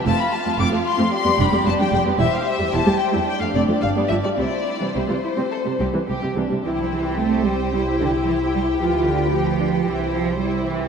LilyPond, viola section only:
\new Staff \with { instrumentName = "Viola section" } { \clef bass \time 4/4 \key c \major \tempo 4 = 112 <a c'>16 r8 <f a>16 <a c'>16 <f a>16 r16 <a c'>16 r16 <g b>16 <g d'>16 g16 <g b>16 <g d'>16 g16 <g b>16 | <g e'>16 r8 g16 <g e'>16 g16 r16 <g e'>16 r16 a16 <a c'>16 <f a>16 g16 <g b>16 <f g>16 g16 | <g c'>16 r8 <e g>16 <g c'>16 <e g>16 r16 <g c'>16 r16 g16 <g c'>16 <e g>16 g16 <g c'>16 <e g>16 g16 | e'4 c'4 e'2 |
f'4 g'8 d'8 e'4 e'4 | }